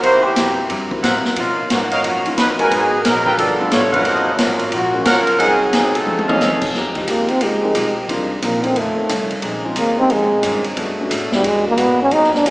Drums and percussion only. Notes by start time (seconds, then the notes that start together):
0.03 kick, ride
0.36 kick, snare, hi-hat pedal, ride
0.70 kick, ride
0.91 kick
1.03 kick, snare, hi-hat pedal, ride
1.25 snare
1.36 kick, ride
1.70 kick, snare, hi-hat pedal, ride
1.91 ride
2.04 kick, ride
2.26 ride
2.38 kick, snare, hi-hat pedal, ride
2.59 ride
2.71 kick, ride
3.05 kick, snare, hi-hat pedal, ride
3.26 kick
3.38 kick, ride
3.71 kick, snare, hi-hat pedal, ride
3.93 kick, ride
4.05 kick, ride
4.38 kick, snare, hi-hat pedal, ride
4.59 ride
4.72 kick, ride
5.05 kick, snare, hi-hat pedal, ride
5.27 ride
5.40 kick, ride
5.73 kick, snare, hi-hat pedal, ride
5.95 ride
6.07 high tom
6.18 high tom
6.29 mid tom
6.40 snare, hi-hat pedal
6.62 kick, crash
6.74 kick, snare
6.95 kick, ride
7.08 kick, hi-hat pedal, ride
7.28 ride
7.41 kick, ride
7.75 kick, hi-hat pedal, ride
8.09 kick, ride
8.42 kick, hi-hat pedal, ride
8.64 ride
8.76 kick, ride
9.09 kick, hi-hat pedal, ride
9.30 ride
9.42 kick, ride
9.76 kick, hi-hat pedal, ride
10.10 kick, ride
10.43 kick, hi-hat pedal, ride
10.64 ride
10.77 kick, ride
11.11 kick, hi-hat pedal, ride
11.32 snare
11.44 kick, ride
11.77 kick, hi-hat pedal, ride
12.11 kick, ride
12.23 snare
12.34 snare
12.45 kick, hi-hat pedal, ride